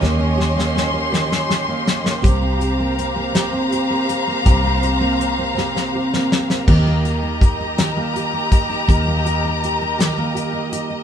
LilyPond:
<<
  \new Staff \with { instrumentName = "String section" } { \time 6/8 \key ees \mixolydian \tempo 4. = 54 << { <des'' ees'' c'''>2. | <c'' f'' bes''>2.~ | <c'' f'' bes''>2. | <bes' ees'' bes''>2.~ |
<bes' ees'' bes''>2. | } \\ { g'2.~ | g'2.~ | g'2. | g'2.~ |
g'2. | } >> }
  \new Staff \with { instrumentName = "Steel-string acoustic guitar" } { \time 6/8 \key ees \mixolydian <ees bes des' g'>16 des'16 g'16 bes16 des'16 bes16 <ees g'>16 des'16 g'16 bes16 des'16 bes16 | <c g'>16 c'16 g'16 bes16 c'16 bes16 <c g'>16 c'16 g'16 bes16 c'16 bes16 | <c g'>16 c'16 g'16 bes16 c'16 bes16 <c g'>16 c'16 g'16 bes16 c'16 bes16 | <ees g'>16 bes16 g'16 ees'16 g'16 ees'16 <ees g'>16 bes16 g'16 ees'16 g'16 ees'16 |
<ees g'>16 bes16 g'16 ees'16 g'16 ees'16 <ees g'>16 bes16 g'16 ees'16 g'16 ees'16 | }
  \new Staff \with { instrumentName = "Fingered electric bass" } { \clef bass \time 6/8 \key ees \mixolydian ees,2. | c,2. | c,2. | ees,2. |
ees,2. | }
  \new DrumStaff \with { instrumentName = "Drums" } \drummode { \time 6/8 sn8 sn16 sn16 sn8 sn16 sn16 sn8 sn16 sn16 | <hh bd>8 hh8 hh8 <hh sn>8 hh8 hh8 | <hh bd>8 hh8 hh8 sn16 sn8 sn16 sn16 sn16 | <cymc bd>8 hh8 <hh bd>8 <hh sn>8 hh8 <hh bd>8 |
<hh bd>8 hh8 hh8 <hh sn>8 hh8 hh8 | }
>>